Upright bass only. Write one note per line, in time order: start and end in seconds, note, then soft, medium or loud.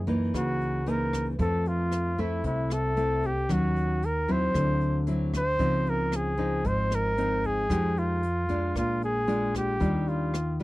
0.00 0.30 F#2 medium
0.34 1.35 C#2 medium
1.39 2.40 F2 loud
2.44 3.45 C2 medium
3.49 4.50 D#2 loud
4.54 5.56 D2 medium
5.60 6.61 C#2 medium
6.64 7.66 G#1 medium
7.69 8.71 F2 loud
8.75 9.77 A#1 medium
9.81 10.63 D#2 loud